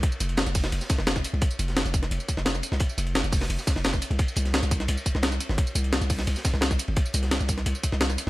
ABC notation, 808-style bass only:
X:1
M:4/4
L:1/16
Q:1/4=173
K:Cm
V:1 name="808-style bass" clef=bass
z2 F,,,3 F,,,3 F,,, z2 F,,,3 z C,, | z2 F,,,3 F,,,3 F,,, z2 F,,,3 z C,, | z2 F,,,3 F,,,3 F,,, z2 F,,,3 z C,, | z2 C,,3 C,,3 C,, z2 C,,3 z G,,, |
z2 C,,3 C,,3 C,, z2 C,,3 z G,,, | z2 C,,3 C,,3 C,, z2 C,,3 z2 |]